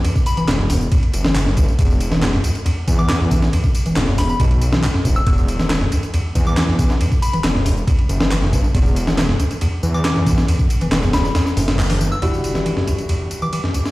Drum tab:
RD |x-xxx---xxx-x-x-|x-x-x-xxx-x-x-x-|x-xxx---xxx-x-x-|x-x-x-xxx-x-x-x-|
HH |------o---------|----------------|------o---------|----------------|
TB |xxxxx-xxx-xxx-xx|xxxxx-xxx-xxx-xx|xxxxx-xxx-xxx-xx|xxxxx-xxx-xxx-xx|
CP |----x-------x---|----x-------x---|----x-------x---|----x-------x---|
SD |----oo-----o-o--|---ooo------oo-o|----oo-----o-o--|---ooo------oo-o|
BD |-o------o-----o-|o---------o---o-|-o------o-----o-|o---------o---o-|

RD |x-xxx---xxx-x-x-|x-x-x-xxx---x-x-|x-xxx-x-x--x----|x-x-x-xxx-x-x-x-|
HH |------o---------|----------------|----------o--o--|----------------|
TB |xxxxx-xxx-xxx-xx|xxxxx-xxx-xxx-xx|xxxxxxxxxxxxxxxx|xxxxx-xxx-xxx-xx|
CP |----x-------x---|----x-------x---|----x-------x---|----------------|
SD |----oo-----o-o--|---ooo------oo-o|----oooooo-oo---|---o-o-------o-o|
BD |-o------o-----o-|o-------------o-|-o--------------|----------------|